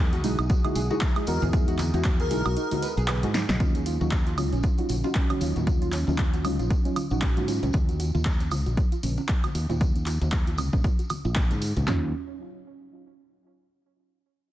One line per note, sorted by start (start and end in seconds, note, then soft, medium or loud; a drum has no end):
0.00 0.24 E2 loud
0.00 3.56 G#4 medium
0.00 3.56 F#5 medium
0.00 3.56 D#6 medium
0.13 0.16 F#4 loud
0.13 closed hi-hat medium
0.13 tambourine soft
0.23 0.36 B1 medium
0.23 0.40 G#3 medium
0.23 0.40 D#4 medium
0.23 0.30 D#4 medium
0.23 0.41 E4 medium
0.23 0.41 F#4 medium
0.23 open hi-hat loud
0.23 tambourine medium
0.23 high conga medium
0.38 0.48 B1 medium
0.38 0.42 D#4 medium
0.38 closed hi-hat soft
0.38 tambourine soft
0.38 high woodblock medium
0.49 0.56 F#4 medium
0.49 kick loud
0.49 closed hi-hat medium
0.49 tambourine medium
0.64 0.78 G#3 medium
0.64 0.78 D#4 medium
0.64 0.78 E4 medium
0.64 0.78 F#4 medium
0.64 0.72 G#4 medium
0.64 closed hi-hat medium
0.64 tambourine soft
0.64 high conga loud
0.64 high woodblock medium
0.75 0.88 B1 loud
0.75 0.82 G#4 medium
0.75 open hi-hat loud
0.75 tambourine medium
0.90 1.12 G#3 medium
0.90 1.12 D#4 medium
0.90 1.12 E4 medium
0.90 0.93 F#4 loud
0.90 1.12 G#4 loud
0.90 tambourine soft
0.90 muted conga medium
1.01 1.08 D#4 medium
1.01 kick loud
1.01 clap loud
1.01 closed hi-hat medium
1.01 tambourine medium
1.01 high conga medium
1.16 1.25 G#3 medium
1.16 1.26 D#4 medium
1.16 1.19 D#4 medium
1.16 1.26 E4 medium
1.16 1.26 G#4 loud
1.16 closed hi-hat medium
1.16 tambourine soft
1.16 high woodblock medium
1.27 1.39 E2 medium
1.27 1.50 G#3 medium
1.27 1.50 D#4 medium
1.27 1.50 E4 medium
1.27 1.34 F#4 medium
1.27 1.50 F#4 loud
1.27 1.43 A#4 medium
1.27 open hi-hat loud
1.27 tambourine loud
1.27 muted conga medium
1.42 1.90 E2 medium
1.42 1.49 G#4 medium
1.42 closed hi-hat soft
1.42 tambourine soft
1.42 high conga medium
1.42 low conga medium
1.53 1.77 G#3 medium
1.53 1.77 D#4 medium
1.53 1.78 E4 medium
1.53 1.78 F#4 medium
1.53 1.60 G#4 medium
1.53 kick loud
1.53 closed hi-hat medium
1.53 tambourine medium
1.68 1.71 F#4 loud
1.68 closed hi-hat medium
1.68 tambourine soft
1.78 1.86 D#4 medium
1.78 clap soft
1.78 open hi-hat loud
1.78 tambourine loud
1.78 high conga loud
1.93 2.31 E2 loud
1.93 2.07 G#3 loud
1.93 2.07 D#4 medium
1.93 1.97 D#4 medium
1.93 2.07 E4 medium
1.93 2.08 F#4 loud
1.93 closed hi-hat soft
1.93 tambourine soft
1.93 muted conga medium
2.04 2.11 F#4 medium
2.04 kick loud
2.04 clap loud
2.04 closed hi-hat medium
2.04 tambourine soft
2.20 2.27 G#4 medium
2.20 2.91 A#4 loud
2.20 closed hi-hat medium
2.20 tambourine soft
2.30 2.43 B1 medium
2.30 2.47 G#3 medium
2.30 2.47 D#4 medium
2.30 2.48 E4 medium
2.30 2.48 F#4 medium
2.30 2.37 G#4 medium
2.30 open hi-hat loud
2.30 tambourine loud
2.30 high conga medium
2.45 2.55 B1 medium
2.45 2.48 F#4 loud
2.45 closed hi-hat soft
2.45 tambourine soft
2.45 high woodblock medium
2.57 2.63 D#4 medium
2.57 closed hi-hat medium
2.57 tambourine medium
2.71 2.85 G#3 medium
2.71 2.85 D#4 medium
2.71 2.74 D#4 medium
2.71 2.85 E4 medium
2.71 2.85 F#4 medium
2.71 open hi-hat medium
2.71 tambourine soft
2.71 high conga medium
2.83 2.89 B4 loud
2.83 open hi-hat loud
2.83 tambourine medium
2.83 muted conga soft
2.97 3.23 B1 loud
2.97 3.05 G#4 medium
2.97 closed hi-hat soft
2.97 tambourine soft
3.08 3.15 B4 loud
3.08 clap loud
3.08 closed hi-hat medium
3.08 tambourine soft
3.08 high conga medium
3.08 high woodblock medium
3.23 3.44 G#2 medium
3.23 3.57 G#3 medium
3.23 3.57 D#4 medium
3.23 3.58 E4 medium
3.23 3.28 F#4 medium
3.23 3.58 G#4 medium
3.23 closed hi-hat medium
3.23 tambourine soft
3.34 3.41 D#4 loud
3.34 snare medium
3.34 open hi-hat loud
3.34 tambourine loud
3.34 muted conga medium
3.49 3.58 B1 loud
3.49 3.52 D#5 medium
3.49 snare loud
3.49 closed hi-hat soft
3.49 tambourine soft
3.49 high conga medium
3.49 low conga medium
3.60 3.96 D#2 medium
3.60 3.84 F#3 medium
3.60 3.84 C#4 medium
3.60 3.67 C#4 medium
3.60 3.85 D#4 medium
3.60 3.85 F4 medium
3.60 kick loud
3.60 closed hi-hat medium
3.60 tambourine soft
3.60 high conga medium
3.75 3.78 C#4 medium
3.75 closed hi-hat medium
3.75 tambourine soft
3.86 3.92 F4 medium
3.86 open hi-hat loud
3.86 tambourine loud
4.00 4.38 D#2 loud
4.00 4.14 F#3 medium
4.00 4.14 C#4 medium
4.00 4.14 D#4 medium
4.00 4.15 F4 loud
4.00 4.08 F#4 medium
4.00 tambourine soft
4.00 muted conga medium
4.00 high conga medium
4.11 4.18 F#4 medium
4.11 kick loud
4.11 clap loud
4.11 closed hi-hat medium
4.11 tambourine medium
4.27 4.29 F4 loud
4.27 closed hi-hat medium
4.27 tambourine soft
4.37 4.50 C#2 medium
4.37 4.54 F#3 medium
4.37 4.54 C#4 medium
4.37 4.44 C#4 medium
4.37 4.54 D#4 medium
4.37 4.55 F4 medium
4.37 open hi-hat loud
4.37 tambourine medium
4.37 high conga medium
4.37 high woodblock medium
4.52 4.62 A#1 medium
4.52 4.55 C#4 medium
4.52 closed hi-hat soft
4.52 tambourine soft
4.63 4.70 F4 medium
4.63 kick loud
4.63 closed hi-hat medium
4.63 tambourine soft
4.78 4.92 F#3 medium
4.78 4.92 C#4 medium
4.78 4.92 D#4 medium
4.78 4.92 F4 medium
4.78 4.86 F#4 medium
4.78 closed hi-hat medium
4.78 tambourine soft
4.89 5.01 A#1 medium
4.89 4.96 F#4 medium
4.89 open hi-hat loud
4.89 tambourine medium
4.89 high conga medium
5.04 5.25 F#3 medium
5.04 5.26 C#4 medium
5.04 5.26 D#4 medium
5.04 5.07 F4 medium
5.04 5.26 F#4 loud
5.04 tambourine soft
5.04 muted conga medium
5.15 5.22 C#4 medium
5.15 kick loud
5.15 clap loud
5.15 closed hi-hat medium
5.15 tambourine soft
5.30 5.39 F#3 medium
5.30 5.39 C#4 medium
5.30 5.33 C#4 medium
5.30 5.40 D#4 medium
5.30 5.40 F#4 loud
5.30 closed hi-hat medium
5.30 tambourine soft
5.30 high conga medium
5.30 high woodblock medium
5.41 5.53 D#2 medium
5.41 5.63 F#3 medium
5.41 5.64 C#4 medium
5.41 5.64 D#4 medium
5.41 5.48 F4 medium
5.41 5.64 F4 medium
5.41 open hi-hat loud
5.41 tambourine medium
5.41 muted conga medium
5.56 6.03 D#2 medium
5.56 5.63 F#4 medium
5.56 closed hi-hat soft
5.56 tambourine soft
5.56 low conga medium
5.66 5.91 F#3 medium
5.66 5.91 C#4 medium
5.66 5.91 D#4 medium
5.66 5.92 F4 medium
5.66 5.73 F#4 medium
5.66 kick loud
5.66 closed hi-hat medium
5.66 tambourine medium
5.66 high conga medium
5.82 5.85 F4 loud
5.82 closed hi-hat medium
5.82 tambourine soft
5.92 5.99 C#4 medium
5.92 clap soft
5.92 open hi-hat loud
5.92 tambourine medium
6.07 6.45 D#2 loud
6.07 6.21 F#3 medium
6.07 6.21 C#4 medium
6.07 6.11 C#4 medium
6.07 6.21 D#4 medium
6.07 6.21 F4 loud
6.07 tambourine soft
6.07 muted conga medium
6.07 high conga medium
6.18 6.25 F4 medium
6.18 kick loud
6.18 clap loud
6.18 closed hi-hat medium
6.18 tambourine medium
6.33 6.41 F#4 medium
6.33 closed hi-hat medium
6.33 tambourine soft
6.44 6.57 C#2 medium
6.44 6.61 F#3 medium
6.44 6.61 C#4 medium
6.44 6.61 D#4 medium
6.44 6.61 F4 medium
6.44 6.51 F#4 medium
6.44 open hi-hat loud
6.44 tambourine medium
6.44 high conga medium
6.44 high woodblock medium
6.59 6.68 A#1 medium
6.59 6.62 F4 loud
6.59 closed hi-hat soft
6.59 tambourine soft
6.70 6.77 C#4 medium
6.70 kick loud
6.70 closed hi-hat medium
6.70 tambourine soft
6.85 6.98 F#3 medium
6.85 6.99 C#4 medium
6.85 6.88 C#4 medium
6.85 6.99 D#4 medium
6.85 6.99 F4 medium
6.85 closed hi-hat soft
6.85 tambourine soft
6.96 7.03 F4 medium
6.96 open hi-hat loud
6.96 tambourine medium
6.96 high conga medium
6.96 high woodblock medium
7.10 7.36 A#1 medium
7.10 7.32 F#3 medium
7.10 7.32 C#4 medium
7.10 7.33 D#4 medium
7.10 7.18 F#4 medium
7.10 7.33 F#4 loud
7.10 tambourine soft
7.22 7.29 F#4 medium
7.22 kick loud
7.22 clap loud
7.22 closed hi-hat medium
7.22 tambourine medium
7.36 7.57 G#2 medium
7.36 7.46 F#3 medium
7.36 7.46 C#4 medium
7.36 7.46 D#4 medium
7.36 7.40 F4 loud
7.36 7.47 F#4 loud
7.36 closed hi-hat medium
7.36 tambourine soft
7.36 high conga medium
7.48 7.70 F#3 medium
7.48 7.70 C#4 medium
7.48 7.54 C#4 medium
7.48 7.71 D#4 medium
7.48 7.71 F4 medium
7.48 open hi-hat loud
7.48 tambourine medium
7.63 7.72 C#2 loud
7.63 7.66 C#4 medium
7.63 closed hi-hat soft
7.63 tambourine soft
7.63 low conga loud
7.73 8.10 D#2 medium
7.73 7.80 F4 medium
7.73 kick loud
7.73 closed hi-hat medium
7.73 tambourine medium
7.73 high conga loud
7.89 7.96 F#4 medium
7.89 closed hi-hat medium
7.89 tambourine soft
8.00 8.06 F#4 medium
8.00 open hi-hat loud
8.00 tambourine medium
8.14 8.51 D#2 loud
8.14 8.17 F4 loud
8.14 tambourine soft
8.14 muted conga medium
8.14 high conga medium
8.25 8.32 C#4 medium
8.25 kick loud
8.25 clap loud
8.25 closed hi-hat medium
8.25 tambourine medium
8.40 8.43 C#4 medium
8.40 closed hi-hat medium
8.40 tambourine soft
8.51 8.64 C#2 medium
8.51 8.58 F4 medium
8.51 open hi-hat loud
8.51 tambourine loud
8.51 high conga loud
8.51 high woodblock medium
8.66 8.75 A#1 medium
8.66 8.73 F#4 medium
8.66 closed hi-hat soft
8.66 tambourine soft
8.77 8.84 F#4 medium
8.77 kick loud
8.77 closed hi-hat medium
8.77 tambourine soft
8.92 8.95 F4 loud
8.92 closed hi-hat medium
8.92 tambourine soft
9.03 9.15 A#1 medium
9.03 9.10 C#4 medium
9.03 open hi-hat loud
9.03 tambourine loud
9.03 high conga medium
9.17 9.21 C#4 medium
9.17 tambourine soft
9.17 muted conga medium
9.29 9.35 F4 medium
9.29 kick loud
9.29 clap loud
9.29 closed hi-hat medium
9.29 tambourine medium
9.44 9.51 F#4 medium
9.44 closed hi-hat medium
9.44 tambourine soft
9.44 high conga medium
9.44 high woodblock medium
9.55 9.67 D#2 medium
9.55 9.61 F#4 medium
9.55 open hi-hat loud
9.55 tambourine medium
9.55 muted conga medium
9.69 10.17 D#2 medium
9.69 9.73 F4 loud
9.69 closed hi-hat soft
9.69 tambourine soft
9.69 low conga medium
9.81 9.87 C#4 medium
9.81 kick loud
9.81 closed hi-hat medium
9.81 tambourine medium
9.81 high conga loud
9.96 9.98 C#4 medium
9.96 closed hi-hat soft
9.96 tambourine soft
10.06 10.13 F4 medium
10.06 clap soft
10.06 open hi-hat loud
10.06 tambourine medium
10.21 10.58 D#2 loud
10.21 10.29 F#4 medium
10.21 closed hi-hat soft
10.21 tambourine soft
10.21 muted conga medium
10.21 high conga medium
10.32 10.39 F#4 medium
10.32 kick loud
10.32 clap loud
10.32 closed hi-hat medium
10.32 tambourine medium
10.47 10.50 F4 loud
10.47 closed hi-hat medium
10.47 tambourine soft
10.58 10.70 C#2 medium
10.58 10.65 C#4 medium
10.58 open hi-hat loud
10.58 tambourine medium
10.58 high conga loud
10.58 high woodblock medium
10.73 10.82 A#1 medium
10.73 10.76 C#4 medium
10.73 kick medium
10.73 closed hi-hat soft
10.73 tambourine soft
10.84 10.91 F4 medium
10.84 kick loud
10.84 closed hi-hat medium
10.84 tambourine medium
10.99 11.06 F#4 medium
10.99 closed hi-hat soft
10.99 tambourine soft
11.10 11.17 F#4 medium
11.10 open hi-hat loud
11.10 tambourine medium
11.10 muted conga soft
11.10 high conga medium
11.10 high woodblock medium
11.25 11.50 A#1 medium
11.25 11.28 F4 loud
11.25 tambourine soft
11.35 11.42 C#4 medium
11.35 kick loud
11.35 clap loud
11.35 closed hi-hat medium
11.35 tambourine medium
11.51 11.71 G#2 medium
11.51 11.54 C#4 medium
11.51 closed hi-hat medium
11.51 tambourine soft
11.51 high conga loud
11.62 11.68 F4 medium
11.62 open hi-hat loud
11.62 tambourine medium
11.76 11.86 C#2 loud
11.76 11.84 F#4 medium
11.76 closed hi-hat soft
11.76 tambourine soft
11.76 low conga medium
11.86 12.12 D#2 loud
11.86 12.07 F#3 medium
11.86 12.07 C#4 medium
11.86 12.12 C#4 medium
11.86 12.08 D#4 medium
11.86 12.08 F4 medium
11.86 snare loud
11.86 clap medium
11.86 floor tom loud